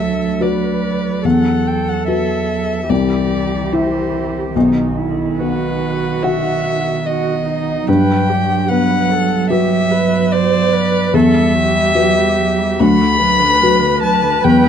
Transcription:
0.00 1.20 D2 soft
0.00 2.86 F#3 soft
0.00 0.43 A4 soft
0.00 0.44 E5 medium
0.41 1.20 F#4 soft
0.41 1.20 B4 soft
0.41 1.25 B4 soft
0.41 1.27 D5 medium
1.25 2.86 E2 medium
1.25 2.87 A4 medium
1.25 1.68 F#5 medium
1.67 1.90 G5 medium
1.89 2.08 F#5 medium
2.08 2.86 F#4 soft
2.08 2.86 B4 soft
2.08 2.92 E5 medium
2.90 4.51 C2 medium
2.90 4.52 E3 medium
2.90 4.58 G4 medium
2.90 3.74 D5 medium
3.73 4.51 E4 soft
3.73 4.55 C5 medium
3.73 4.51 E5 soft
4.56 7.84 B1 medium
4.56 7.84 D#3 medium
4.56 4.99 D#4 medium
4.98 5.41 E4 medium
5.38 6.73 B3 soft
5.38 7.06 F#4 medium
5.38 6.25 B4 medium
6.23 7.84 F#4 soft
6.23 7.08 E5 medium
6.23 7.84 F#5 soft
7.06 7.46 F#4 medium
7.06 7.89 D#5 medium
7.47 7.90 D#4 medium
7.87 11.10 G2 medium
7.87 11.10 F#3 medium
7.87 8.31 B4 medium
7.87 8.71 G5 medium
8.29 8.69 G4 medium
8.69 10.00 B3 soft
8.69 9.12 B4 medium
8.69 9.50 F#5 loud
9.11 9.52 A4 medium
9.50 11.09 F#4 soft
9.50 9.92 G4 medium
9.50 11.10 B4 medium
9.50 10.34 E5 loud
9.91 10.34 B4 medium
10.32 10.74 C5 medium
10.32 11.16 D5 loud
10.73 11.16 B4 medium
11.13 12.76 E2 medium
11.13 11.35 F#3 medium
11.13 11.56 A4 medium
11.13 12.81 E5 loud
11.34 11.56 G3 medium
11.55 11.77 F#3 medium
11.55 12.81 G4 medium
11.76 11.96 G3 medium
11.95 12.18 F#3 medium
11.95 12.76 F#4 soft
11.95 12.76 B4 medium
12.17 12.40 G3 medium
12.38 12.60 F#3 medium
12.58 12.79 G3 medium
12.79 14.40 D2 medium
12.79 13.02 F#3 medium
12.79 13.20 F#4 medium
12.79 14.02 B5 loud
13.00 13.21 D3 medium
13.20 13.42 F#3 medium
13.20 14.69 B4 medium
13.41 13.60 D3 medium
13.60 13.82 F#3 medium
13.60 14.41 F#4 medium
13.60 14.41 B4 medium
13.80 14.02 D3 medium
14.01 14.22 F#3 medium
14.01 14.46 A5 loud
14.20 14.40 D3 medium
14.41 14.69 E2 medium
14.41 14.63 F#3 medium
14.41 14.69 G5 loud
14.61 14.69 G3 medium

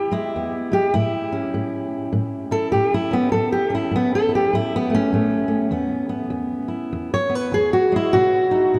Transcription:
0.00 0.29 E2 medium
0.00 0.12 E4 soft
0.00 0.14 G4 medium
0.11 0.70 G#3 medium
0.11 0.73 E4 medium
0.36 0.90 E2 medium
0.36 0.73 B3 soft
0.72 0.91 G#3 soft
0.72 0.93 G4 medium
0.94 1.49 A2 medium
0.94 2.13 E4 loud
1.32 3.10 C#4 soft
1.54 2.09 A2 medium
2.13 2.68 A2 medium
2.51 2.94 E4 soft
2.51 2.71 A4 loud
2.72 3.28 A2 medium
2.72 2.92 G4 medium
2.94 3.14 E4 medium
3.11 3.31 B3 medium
3.11 3.31 C#4 soft
3.32 3.88 A2 medium
3.32 3.52 A4 medium
3.52 3.73 G4 medium
3.70 4.93 C#4 soft
3.75 3.94 E4 medium
3.91 4.47 A2 medium
3.96 4.14 B3 medium
4.15 4.34 A4 loud
4.29 4.54 E4 soft
4.35 4.54 G4 medium
4.53 5.08 A2 medium
4.53 4.74 E4 medium
4.76 4.94 B3 loud
4.90 5.12 A3 soft
4.94 6.14 C#4 loud
5.13 5.68 A2 medium
5.13 5.47 A3 soft
5.48 5.69 A3 soft
5.71 6.27 E2 medium
5.71 6.09 B3 medium
6.09 7.29 B3 medium
6.30 6.87 E2 medium
6.68 7.12 E4 soft
6.93 7.48 E2 medium
7.14 7.35 C#5 loud
7.29 7.54 B3 medium
7.35 7.54 B4 loud
7.52 8.08 E2 medium
7.52 7.73 G#4 loud
7.73 7.93 F#4 medium
7.92 8.11 G#3 soft
7.92 8.15 E4 medium
8.13 8.69 B2 medium
8.13 8.79 F#4 loud
8.51 8.79 D#4 medium
8.74 8.79 B2 medium

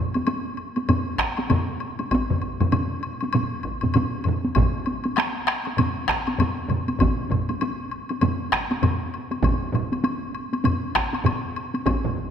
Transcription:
0.14 taiko high medium
0.14 high woodblock soft
0.27 taiko high medium
0.27 high woodblock soft
0.57 high woodblock soft
0.76 taiko high medium
0.76 high woodblock soft
0.89 taiko low-mid medium
0.89 taiko mid loud
0.89 taiko high medium
0.89 high woodblock medium
1.19 taiko rim medium
1.19 taiko medium
1.19 high woodblock soft
1.37 taiko high medium
1.37 high woodblock soft
1.50 taiko low-mid loud
1.50 taiko mid medium
1.50 taiko high medium
1.50 high woodblock soft
1.80 high woodblock soft
1.99 taiko high medium
1.99 high woodblock soft
2.11 taiko medium
2.11 taiko high medium
2.11 high woodblock soft
2.30 taiko low-mid loud
2.30 taiko mid medium
2.42 taiko medium
2.42 high woodblock soft
2.60 taiko low-mid loud
2.60 taiko mid medium
2.60 taiko high soft
2.60 high woodblock soft
2.72 taiko low-mid medium
2.72 taiko mid medium
2.72 taiko high medium
2.72 high woodblock medium
3.03 high woodblock soft
3.21 taiko high medium
3.21 high woodblock soft
3.33 taiko low-mid medium
3.33 taiko mid loud
3.33 taiko high medium
3.33 high woodblock medium
3.63 taiko medium
3.63 high woodblock soft
3.81 taiko low-mid medium
3.81 taiko mid medium
3.81 taiko high medium
3.81 high woodblock soft
3.94 taiko low-mid loud
3.94 taiko mid loud
3.94 taiko high medium
3.94 high woodblock medium
4.24 taiko low-mid medium
4.24 taiko mid medium
4.24 high woodblock soft
4.45 taiko high soft
4.55 taiko loud
4.55 taiko low-mid medium
4.55 taiko mid loud
4.55 taiko high medium
4.55 high woodblock medium
4.86 taiko high soft
4.86 high woodblock soft
5.04 taiko high medium
5.04 high woodblock soft
5.16 taiko rim medium
5.16 taiko high medium
5.16 high woodblock medium
5.19 taiko rim medium
5.47 taiko rim medium
5.47 high woodblock soft
5.65 taiko high medium
5.65 high woodblock soft
5.77 taiko low-mid medium
5.77 taiko mid loud
5.77 taiko high medium
5.77 high woodblock medium
6.08 taiko rim medium
6.08 taiko medium
6.08 high woodblock soft
6.10 taiko rim medium
6.27 taiko high soft
6.27 high woodblock soft
6.39 taiko low-mid loud
6.39 taiko mid medium
6.39 taiko high medium
6.39 high woodblock medium
6.69 taiko low-mid medium
6.69 taiko mid medium
6.69 high woodblock soft
6.88 taiko high soft
6.88 high woodblock soft
6.99 taiko loud
6.99 taiko low-mid medium
6.99 taiko mid medium
6.99 taiko high medium
6.99 high woodblock medium
7.30 taiko medium
7.30 taiko low-mid medium
7.30 taiko mid medium
7.30 high woodblock soft
7.49 taiko high soft
7.49 high woodblock soft
7.61 taiko high medium
7.61 high woodblock medium
7.91 high woodblock soft
8.09 taiko high medium
8.09 high woodblock soft
8.21 taiko low-mid medium
8.21 taiko mid medium
8.21 taiko high medium
8.21 high woodblock soft
8.52 taiko rim medium
8.52 taiko medium
8.52 high woodblock soft
8.71 taiko high medium
8.71 high woodblock soft
8.82 taiko low-mid loud
8.82 taiko mid loud
8.82 taiko high medium
8.82 high woodblock medium
9.14 high woodblock soft
9.31 taiko high medium
9.31 high woodblock soft
9.43 taiko loud
9.43 taiko low-mid medium
9.43 taiko mid medium
9.43 taiko high medium
9.43 high woodblock medium
9.73 taiko low-mid loud
9.73 taiko mid loud
9.73 high woodblock soft
9.92 taiko high medium
9.92 high woodblock soft
10.04 taiko high medium
10.04 high woodblock soft
10.35 high woodblock soft
10.53 taiko high medium
10.53 high woodblock soft
10.64 taiko low-mid medium
10.64 taiko mid medium
10.64 taiko high medium
10.64 high woodblock medium
10.95 taiko rim medium
10.95 taiko medium
10.95 high woodblock soft
11.13 taiko high medium
11.13 high woodblock soft
11.25 taiko low-mid loud
11.25 taiko mid medium
11.25 taiko high medium
11.25 high woodblock medium
11.56 high woodblock soft
11.74 taiko high soft
11.74 high woodblock soft
11.86 taiko loud
11.86 taiko high medium
11.86 high woodblock medium
12.04 taiko low-mid medium
12.04 taiko mid medium
12.16 taiko medium

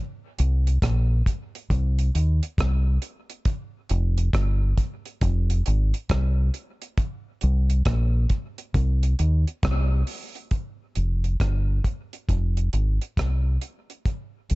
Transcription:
0.39 0.78 C2 medium
0.39 closed hi-hat medium
0.67 closed hi-hat medium
0.82 1.21 A#1 loud
0.82 kick loud
0.82 cross-stick medium
0.82 closed hi-hat medium
1.26 kick medium
1.26 closed hi-hat medium
1.55 closed hi-hat medium
1.70 2.09 C2 loud
1.70 kick loud
1.70 closed hi-hat medium
1.99 closed hi-hat medium
2.15 2.39 D#2 medium
2.15 closed hi-hat medium
2.43 closed hi-hat medium
2.58 2.97 C2 medium
2.58 kick loud
2.58 cross-stick loud
2.58 closed hi-hat medium
3.02 closed hi-hat medium
3.30 closed hi-hat soft
3.45 kick loud
3.45 closed hi-hat medium
3.89 4.29 F1 medium
3.89 closed hi-hat medium
4.18 closed hi-hat medium
4.33 4.73 G1 loud
4.33 kick loud
4.33 cross-stick loud
4.33 closed hi-hat medium
4.78 kick medium
4.78 closed hi-hat medium
5.05 closed hi-hat medium
5.21 5.61 F1 loud
5.21 kick loud
5.21 closed hi-hat medium
5.50 closed hi-hat medium
5.66 5.91 G#1 medium
5.66 closed hi-hat medium
5.94 closed hi-hat medium
6.09 6.49 C2 medium
6.09 kick loud
6.09 cross-stick loud
6.09 closed hi-hat medium
6.54 closed hi-hat medium
6.82 closed hi-hat soft
6.98 kick loud
6.98 closed hi-hat medium
7.41 7.81 C2 medium
7.41 closed hi-hat medium
7.70 closed hi-hat medium
7.85 8.25 A#1 loud
7.85 kick loud
7.85 cross-stick loud
7.85 closed hi-hat medium
8.29 kick medium
8.29 closed hi-hat medium
8.58 closed hi-hat medium
8.74 9.13 C2 loud
8.74 kick medium
8.74 closed hi-hat medium
9.03 closed hi-hat medium
9.19 9.44 D#2 medium
9.19 closed hi-hat medium
9.47 closed hi-hat soft
9.63 10.02 C2 medium
9.63 kick loud
9.63 cross-stick loud
9.63 closed hi-hat medium
10.07 open hi-hat medium
10.35 closed hi-hat soft
10.51 kick loud
10.51 closed hi-hat medium
10.95 11.35 F1 medium
10.95 closed hi-hat medium
11.24 closed hi-hat soft
11.40 11.79 G1 loud
11.40 kick loud
11.40 cross-stick medium
11.40 closed hi-hat medium
11.84 kick medium
11.84 closed hi-hat medium
12.13 closed hi-hat soft
12.29 12.68 F1 medium
12.29 kick medium
12.29 closed hi-hat medium
12.57 closed hi-hat medium
12.73 12.98 G#1 medium
12.73 closed hi-hat medium
13.01 closed hi-hat soft
13.17 13.56 C2 medium
13.17 kick loud
13.17 cross-stick loud
13.17 closed hi-hat medium
13.61 closed hi-hat medium
13.90 closed hi-hat soft
14.06 kick loud
14.06 closed hi-hat medium
14.50 14.55 C2 medium
14.50 closed hi-hat medium

